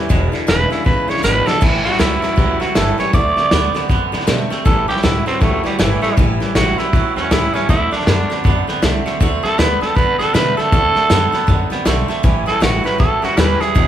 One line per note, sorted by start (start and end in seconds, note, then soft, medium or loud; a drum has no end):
0.00 0.10 C#4 medium
0.09 0.32 E1 loud
0.09 0.33 E2 medium
0.09 0.31 E2 medium
0.09 0.33 B2 medium
0.09 0.31 B2 loud
0.09 0.33 E3 medium
0.09 0.32 G#3 medium
0.09 0.32 D4 medium
0.09 0.31 E4 medium
0.09 kick loud
0.09 snare soft
0.32 0.47 E2 medium
0.32 0.47 B2 medium
0.32 0.46 E3 soft
0.32 0.47 G#3 medium
0.32 0.47 D4 medium
0.32 0.47 E4 medium
0.32 muted upright bass stroke medium
0.32 snare soft
0.47 0.70 E1 medium
0.47 0.71 E2 medium
0.47 0.69 E2 medium
0.47 0.71 B2 medium
0.47 0.69 C#3 medium
0.47 0.71 E3 medium
0.47 0.71 G#3 medium
0.47 0.70 D4 medium
0.47 0.69 E4 medium
0.47 0.71 B4 loud
0.47 snare loud
0.47 hi-hat pedal medium
0.70 0.85 E2 medium
0.70 0.85 C#3 medium
0.70 0.83 E3 soft
0.70 0.85 G#3 soft
0.70 0.85 D4 medium
0.70 0.86 E4 medium
0.70 0.85 E4 medium
0.70 muted upright bass stroke medium
0.70 snare soft
0.84 1.08 G#1 loud
0.84 1.07 E2 medium
0.84 1.07 C#3 medium
0.84 1.09 E3 medium
0.84 1.08 G#3 medium
0.84 1.08 D4 medium
0.84 1.07 E4 medium
0.84 1.11 B4 medium
0.84 kick loud
0.84 snare soft
1.08 1.23 B1 medium
1.08 1.22 E2 medium
1.08 1.23 C#3 medium
1.08 1.23 E3 soft
1.08 1.23 G#3 soft
1.08 1.23 D4 medium
1.08 1.23 E4 medium
1.08 1.23 C#5 medium
1.08 snare soft
1.17 snare soft
1.23 1.46 G#1 medium
1.23 1.47 E2 medium
1.23 1.45 E2 medium
1.23 1.47 B2 medium
1.23 1.45 B2 loud
1.23 1.47 E3 medium
1.23 1.46 G#3 medium
1.23 1.45 D4 medium
1.23 1.44 E4 medium
1.23 1.48 B4 loud
1.23 snare medium
1.23 hi-hat pedal medium
1.46 1.60 E2 medium
1.46 1.60 B2 medium
1.46 1.60 E3 medium
1.46 1.61 G#3 medium
1.46 1.62 D4 medium
1.46 1.61 E4 medium
1.46 1.61 A4 loud
1.46 snare medium
1.61 1.84 A1 loud
1.61 1.82 A2 medium
1.61 1.85 A2 medium
1.61 1.85 E3 medium
1.61 1.83 E3 loud
1.61 1.85 G3 medium
1.61 1.84 C#4 medium
1.61 1.83 E4 medium
1.61 kick loud
1.61 snare soft
1.61 crash loud
1.84 1.98 A2 medium
1.84 1.98 E3 medium
1.84 1.99 G3 soft
1.84 1.99 C#4 soft
1.84 1.99 E4 medium
1.84 2.01 F#4 loud
1.84 muted upright bass stroke medium
1.84 snare soft
1.93 snare soft
1.99 2.22 C#2 medium
1.99 2.20 A2 medium
1.99 2.23 A2 medium
1.99 2.23 E3 medium
1.99 2.21 F#3 medium
1.99 2.23 G3 medium
1.99 2.22 C#4 medium
1.99 2.63 E4 medium
1.99 2.21 E4 medium
1.99 snare loud
1.99 hi-hat pedal medium
2.22 2.36 A2 medium
2.22 2.36 F#3 medium
2.22 2.36 G3 soft
2.22 2.37 C#4 medium
2.22 2.37 E4 medium
2.22 muted upright bass stroke medium
2.22 snare soft
2.36 2.60 C#2 loud
2.36 2.58 A2 medium
2.36 2.60 E3 medium
2.36 2.59 F#3 loud
2.36 2.61 G3 medium
2.36 2.60 C#4 medium
2.36 2.58 E4 medium
2.36 kick loud
2.36 snare soft
2.60 2.74 A2 medium
2.60 2.74 F#3 medium
2.60 2.75 G3 medium
2.60 2.75 C#4 medium
2.60 2.75 E4 medium
2.60 2.78 F#4 medium
2.60 muted upright bass stroke medium
2.60 snare soft
2.75 2.98 G1 medium
2.75 2.96 A2 loud
2.75 2.99 A2 medium
2.75 2.96 E3 loud
2.75 2.99 E3 medium
2.75 2.99 G3 medium
2.75 2.98 C#4 medium
2.75 2.97 E4 loud
2.75 2.99 A4 medium
2.75 snare loud
2.75 hi-hat pedal medium
2.98 3.12 A2 medium
2.98 3.12 E3 medium
2.98 3.13 G3 medium
2.98 3.14 C#4 medium
2.98 3.13 E4 medium
2.98 3.13 C#5 medium
2.98 snare soft
3.13 3.36 D2 loud
3.13 3.34 D3 medium
3.13 3.37 D3 medium
3.13 3.34 A3 loud
3.13 3.37 A3 medium
3.13 3.37 C4 medium
3.13 3.36 F#4 medium
3.13 3.88 D5 loud
3.13 kick loud
3.13 snare soft
3.37 3.50 D3 medium
3.37 3.50 A3 medium
3.37 3.51 A3 soft
3.37 3.52 C4 medium
3.37 3.52 F#4 soft
3.37 muted upright bass stroke medium
3.37 snare soft
3.51 3.74 D2 medium
3.51 3.75 D3 medium
3.51 3.73 D3 medium
3.51 3.75 A3 medium
3.51 3.73 B3 loud
3.51 3.75 C4 medium
3.51 3.73 F#4 medium
3.51 snare loud
3.51 hi-hat pedal medium
3.75 3.88 D3 medium
3.75 3.89 A3 medium
3.75 3.88 B3 medium
3.75 3.90 C4 medium
3.75 3.89 F#4 medium
3.75 muted upright bass stroke medium
3.75 snare soft
3.89 4.12 F#2 loud
3.89 4.13 D3 medium
3.89 4.11 D3 medium
3.89 4.13 A3 medium
3.89 4.11 B3 loud
3.89 4.12 C4 medium
3.89 4.11 F#4 medium
3.89 kick loud
3.89 snare soft
4.12 4.27 A2 medium
4.12 4.26 D3 medium
4.12 4.26 A3 medium
4.12 4.26 B3 medium
4.12 4.27 C4 medium
4.12 4.27 F#4 medium
4.12 snare soft
4.20 snare soft
4.27 4.50 B2 medium
4.27 4.51 D3 medium
4.27 4.48 D3 loud
4.27 4.48 A3 loud
4.27 4.51 A3 loud
4.27 4.50 C4 loud
4.27 4.49 F#4 loud
4.27 snare loud
4.27 hi-hat pedal medium
4.50 4.64 D3 medium
4.50 4.64 A3 medium
4.50 4.65 A3 medium
4.50 4.66 C4 medium
4.50 4.65 F#4 medium
4.50 muted upright bass stroke medium
4.50 snare soft
4.65 4.88 A1 loud
4.65 4.86 A2 medium
4.65 4.89 A2 medium
4.65 4.86 E3 medium
4.65 4.89 E3 medium
4.65 4.89 G3 medium
4.65 4.88 C#4 medium
4.65 4.87 E4 medium
4.65 4.88 A4 loud
4.65 kick loud
4.65 snare soft
4.88 5.02 A2 medium
4.88 5.02 E3 medium
4.88 5.02 G3 soft
4.88 5.03 C#4 soft
4.88 5.03 E4 soft
4.88 5.03 G4 loud
4.88 muted upright bass stroke medium
4.88 snare soft
4.96 snare soft
5.03 5.26 C#2 medium
5.03 5.26 A2 medium
5.03 5.24 A2 medium
5.03 5.27 E3 medium
5.03 5.25 F#3 medium
5.03 5.27 G3 medium
5.03 5.26 C#4 medium
5.03 5.26 E4 medium
5.03 5.25 E4 medium
5.03 snare loud
5.03 hi-hat pedal medium
5.26 5.40 A2 medium
5.26 5.40 F#3 medium
5.26 5.40 G3 soft
5.26 5.43 C4 medium
5.26 5.41 C#4 medium
5.26 5.41 E4 medium
5.26 muted upright bass stroke medium
5.26 snare soft
5.40 5.64 C#2 loud
5.40 5.62 A2 medium
5.40 5.64 E3 medium
5.40 5.62 F#3 medium
5.40 5.65 G3 medium
5.40 5.64 A3 loud
5.40 5.64 C#4 medium
5.40 5.62 E4 medium
5.40 kick loud
5.40 snare soft
5.63 5.78 A2 medium
5.63 5.78 F#3 medium
5.63 5.81 G3 medium
5.63 5.78 G3 soft
5.63 5.79 C#4 medium
5.63 5.79 E4 medium
5.63 snare soft
5.79 6.02 G1 medium
5.79 6.02 A2 medium
5.79 6.00 A2 medium
5.79 6.02 E3 medium
5.79 6.01 E3 medium
5.79 6.00 E3 loud
5.79 6.03 G3 medium
5.79 6.02 C#4 medium
5.79 6.00 E4 medium
5.79 snare loud
5.79 hi-hat pedal medium
6.02 6.16 A2 medium
6.02 6.16 E3 medium
6.02 6.17 G3 soft
6.02 6.16 A3 loud
6.02 6.17 C#4 soft
6.02 6.17 E4 medium
6.02 muted upright bass stroke medium
6.02 snare soft
6.17 6.40 A1 loud
6.17 6.40 A2 medium
6.17 6.38 A2 medium
6.17 6.38 E3 loud
6.17 6.41 E3 medium
6.17 6.41 G3 medium
6.17 6.40 C#4 medium
6.17 6.39 E4 medium
6.17 kick loud
6.17 snare soft
6.40 6.54 A2 medium
6.40 6.54 E3 medium
6.40 6.55 G3 medium
6.40 6.56 C#4 medium
6.40 6.55 E4 medium
6.40 muted upright bass stroke medium
6.40 snare soft
6.55 6.77 A1 medium
6.55 6.76 A2 medium
6.55 6.78 A2 medium
6.55 6.79 E3 medium
6.55 6.76 F#3 medium
6.55 6.79 G3 medium
6.55 6.78 C#4 medium
6.55 6.77 E4 medium
6.55 6.80 F#4 loud
6.55 snare loud
6.55 hi-hat pedal medium
6.78 6.92 A2 medium
6.78 6.92 F#3 medium
6.78 6.93 G3 soft
6.78 6.94 C#4 medium
6.78 6.93 E4 medium
6.78 7.15 E4 medium
6.78 muted upright bass stroke medium
6.78 snare soft
6.93 7.16 C#2 loud
6.93 7.14 A2 medium
6.93 7.16 E3 medium
6.93 7.14 F#3 medium
6.93 7.17 G3 medium
6.93 7.16 C#4 medium
6.93 7.15 E4 medium
6.93 kick loud
6.93 snare soft
7.16 7.30 E2 medium
7.16 7.29 A2 medium
7.16 7.30 F#3 medium
7.16 7.31 G3 soft
7.16 7.33 C#4 medium
7.16 7.31 C#4 soft
7.16 7.31 E4 medium
7.16 snare soft
7.31 7.53 C#2 medium
7.31 7.52 A2 medium
7.31 7.54 A2 medium
7.31 7.52 E3 medium
7.31 7.54 E3 medium
7.31 7.55 G3 medium
7.31 7.54 C#4 loud
7.31 7.55 E4 medium
7.31 7.52 E4 loud
7.31 snare loud
7.31 hi-hat pedal medium
7.54 7.67 A2 medium
7.54 7.68 E3 medium
7.54 7.69 G3 soft
7.54 7.68 C#4 loud
7.54 7.69 C#4 soft
7.54 7.69 E4 medium
7.54 muted upright bass stroke medium
7.54 snare soft
7.69 7.91 D2 loud
7.69 7.92 D3 medium
7.69 7.90 D3 medium
7.69 7.90 A3 loud
7.69 7.93 A3 medium
7.69 7.91 C4 medium
7.69 7.91 E4 loud
7.69 7.90 F#4 medium
7.69 kick loud
7.69 snare soft
7.91 8.05 D3 medium
7.91 8.06 A3 medium
7.91 8.06 A3 soft
7.91 8.07 C4 soft
7.91 8.66 D4 loud
7.91 8.06 F#4 soft
7.91 muted upright bass stroke medium
7.91 snare soft
8.00 snare soft
8.07 8.29 F#2 medium
8.07 8.28 D3 medium
8.07 8.30 D3 medium
8.07 8.31 A3 medium
8.07 8.28 B3 medium
8.07 8.30 C4 medium
8.07 8.29 F#4 medium
8.07 snare loud
8.07 hi-hat pedal medium
8.30 8.43 D3 medium
8.30 8.44 A3 soft
8.30 8.44 B3 medium
8.30 8.45 C4 medium
8.30 8.45 F#4 medium
8.30 snare soft
8.44 8.67 F#2 loud
8.44 8.68 D3 medium
8.44 8.66 D3 medium
8.44 8.68 A3 medium
8.44 8.66 B3 medium
8.44 8.68 C4 medium
8.44 8.66 F#4 medium
8.44 kick loud
8.44 snare soft
8.67 8.81 D3 medium
8.67 8.82 A3 medium
8.67 8.81 B3 medium
8.67 8.82 C4 medium
8.67 8.82 F#4 medium
8.67 muted upright bass stroke medium
8.67 snare soft
8.82 9.05 C2 medium
8.82 9.06 D3 medium
8.82 9.04 D3 medium
8.82 9.06 A3 loud
8.82 9.04 A3 medium
8.82 9.06 C4 loud
8.82 9.05 F#4 loud
8.82 snare loud
8.82 hi-hat pedal medium
9.06 9.19 D3 medium
9.06 9.19 A3 medium
9.06 9.20 A3 soft
9.06 9.20 C4 medium
9.06 9.21 F#4 medium
9.06 muted upright bass stroke medium
9.06 snare soft
9.20 9.43 D2 loud
9.20 9.44 D3 medium
9.20 9.41 D3 medium
9.20 9.42 A3 loud
9.20 9.44 A3 medium
9.20 9.43 C4 medium
9.20 9.42 F#4 loud
9.20 kick loud
9.20 snare soft
9.43 9.57 D3 medium
9.43 9.58 A3 medium
9.43 9.58 A3 soft
9.43 9.58 C4 soft
9.43 9.58 F#4 medium
9.43 9.60 A4 loud
9.43 muted upright bass stroke medium
9.43 snare soft
9.58 9.81 D2 medium
9.58 9.82 D3 medium
9.58 9.80 D3 medium
9.58 9.82 A3 medium
9.58 9.80 B3 medium
9.58 9.82 C4 medium
9.58 9.80 F#4 medium
9.58 9.81 B4 loud
9.58 snare loud
9.58 hi-hat pedal medium
9.81 9.95 D3 medium
9.81 9.95 A3 soft
9.81 9.95 B3 medium
9.81 9.96 C4 soft
9.81 9.96 F#4 medium
9.81 9.98 A4 loud
9.81 muted upright bass stroke medium
9.81 snare soft
9.95 10.19 F#2 loud
9.95 10.19 D3 medium
9.95 10.18 D3 medium
9.95 10.20 A3 medium
9.95 10.18 B3 loud
9.95 10.19 C4 medium
9.95 10.18 F#4 medium
9.95 10.18 B4 loud
9.95 kick loud
9.95 snare soft
10.19 10.34 A2 medium
10.19 10.33 D3 medium
10.19 10.34 A3 soft
10.19 10.33 B3 medium
10.19 10.34 C4 soft
10.19 10.34 F#4 medium
10.19 10.36 A4 loud
10.19 snare soft
10.34 10.57 B2 medium
10.34 10.58 D3 medium
10.34 10.56 D3 medium
10.34 10.58 A3 medium
10.34 10.56 A3 loud
10.34 10.57 C4 medium
10.34 10.56 F#4 loud
10.34 10.57 B4 loud
10.34 snare loud
10.34 hi-hat pedal medium
10.57 10.71 D3 medium
10.57 10.71 A3 medium
10.57 10.72 A3 medium
10.57 10.72 C4 medium
10.57 10.72 F#4 medium
10.57 11.68 A4 loud
10.57 muted upright bass stroke medium
10.57 snare soft
10.72 10.95 D2 loud
10.72 10.96 D3 medium
10.72 10.93 D3 medium
10.72 10.96 A3 medium
10.72 10.94 A3 medium
10.72 10.95 C4 medium
10.72 10.94 F#4 medium
10.72 kick loud
10.72 snare soft
10.95 11.09 D3 medium
10.95 11.09 A3 medium
10.95 11.09 A3 soft
10.95 11.10 C4 medium
10.95 11.10 F#4 medium
10.95 muted upright bass stroke medium
10.95 snare soft
11.10 11.32 F#2 medium
11.10 11.33 D3 medium
11.10 11.31 D3 medium
11.10 11.34 A3 medium
11.10 11.31 B3 medium
11.10 11.32 C4 medium
11.10 11.31 F#4 loud
11.10 snare loud
11.10 hi-hat pedal medium
11.32 11.47 D3 medium
11.32 11.47 A3 medium
11.32 11.47 B3 medium
11.32 11.47 C4 medium
11.32 11.48 F#4 medium
11.32 muted upright bass stroke medium
11.32 snare soft
11.47 11.70 F#2 loud
11.47 11.71 D3 medium
11.47 11.69 D3 medium
11.47 11.71 A3 medium
11.47 11.69 B3 medium
11.47 11.70 C4 medium
11.47 11.69 F#4 medium
11.47 kick loud
11.47 snare soft
11.70 11.85 D3 medium
11.70 11.85 A3 soft
11.70 11.85 B3 loud
11.70 11.85 C4 medium
11.70 11.85 F#4 medium
11.70 muted upright bass stroke medium
11.70 snare soft
11.85 12.08 B1 medium
11.85 12.09 D3 medium
11.85 12.07 D3 medium
11.85 12.09 A3 loud
11.85 12.07 A3 loud
11.85 12.08 C4 loud
11.85 12.07 F#4 loud
11.85 snare loud
11.85 hi-hat pedal medium
12.08 12.22 D3 medium
12.08 12.22 A3 medium
12.08 12.24 A3 medium
12.08 12.24 C4 medium
12.08 12.23 F#4 medium
12.08 snare soft
12.23 12.46 A1 loud
12.23 12.47 A2 medium
12.23 12.45 A2 medium
12.23 12.47 E3 medium
12.23 12.45 E3 loud
12.23 12.47 G3 medium
12.23 12.46 C#4 medium
12.23 12.45 E4 medium
12.23 kick loud
12.23 snare soft
12.46 12.61 A2 medium
12.46 12.61 E3 medium
12.46 12.61 G3 soft
12.46 12.61 C#4 soft
12.46 12.61 E4 medium
12.46 12.64 A4 loud
12.46 muted upright bass stroke medium
12.46 snare soft
12.60 12.84 A1 medium
12.60 12.84 A2 medium
12.60 12.83 A2 medium
12.60 12.85 E3 medium
12.60 12.83 F#3 medium
12.60 12.85 G3 medium
12.60 12.84 C#4 medium
12.60 12.83 E4 medium
12.60 12.85 F#4 loud
12.60 snare loud
12.60 hi-hat pedal medium
12.84 12.98 A2 medium
12.84 12.98 F#3 medium
12.84 12.98 G3 soft
12.84 12.99 C#4 soft
12.84 12.99 E4 medium
12.84 12.99 B4 medium
12.84 muted upright bass stroke medium
12.84 snare soft
12.98 13.22 C#2 loud
12.98 13.20 A2 medium
12.98 13.22 E3 medium
12.98 13.21 F#3 medium
12.98 13.23 G3 medium
12.98 13.22 C#4 medium
12.98 13.21 E4 medium
12.98 13.25 A4 loud
12.98 kick loud
12.98 snare soft
13.22 13.37 E2 medium
13.22 13.36 A2 medium
13.22 13.36 F#3 medium
13.22 13.37 G3 medium
13.22 13.37 C#4 medium
13.22 13.37 E4 medium
13.22 13.39 F#4 medium
13.22 snare soft
13.37 13.60 D#2 medium
13.37 13.58 A2 medium
13.37 13.61 A2 loud
13.37 13.58 E3 loud
13.37 13.61 E3 medium
13.37 13.61 G3 medium
13.37 13.61 C#4 medium
13.37 13.59 E4 medium
13.37 13.62 B4 loud
13.37 snare loud
13.37 hi-hat pedal medium
13.60 13.74 A2 medium
13.60 13.74 E3 medium
13.60 13.75 G3 soft
13.60 13.76 C#4 medium
13.60 13.75 E4 medium
13.60 13.88 G#4 loud
13.60 muted upright bass stroke medium
13.60 snare soft
13.75 13.88 E1 loud
13.75 13.88 E2 medium
13.75 13.88 B2 medium
13.75 13.88 B2 loud
13.75 13.88 E3 medium
13.75 13.88 G#3 medium
13.75 13.88 D4 medium
13.75 13.88 E4 medium
13.75 kick loud
13.75 snare soft